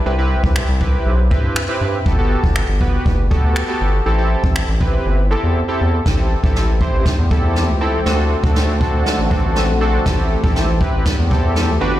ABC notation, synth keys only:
X:1
M:4/4
L:1/16
Q:1/4=120
K:Ador
V:1 name="Synth keys"
[CEGB] [CEGB]4 z [CEGB]3 z [CEGB]2 z [CEGB]2 z | [B,FGA] [B,FGA]4 z [B,FGB]3 z [B,FGA]2 z [B,FGA]2 z | [CEGA] [CEGA]4 z [CEGB]3 z [CEGA]2 z [CEGA]2 z | [CEGA]2 z [CEGA]2 z [CEGc]3 z [CEGA]3 z [CEGA]2 |
[CDFA]2 z [CDFA]2 z [CDFA]3 z [CDFA]3 z [CDFA]2 | [CEGA]2 z [CEGA]2 z [CEGB]3 z [CEGA]3 z [DFGB]2 |]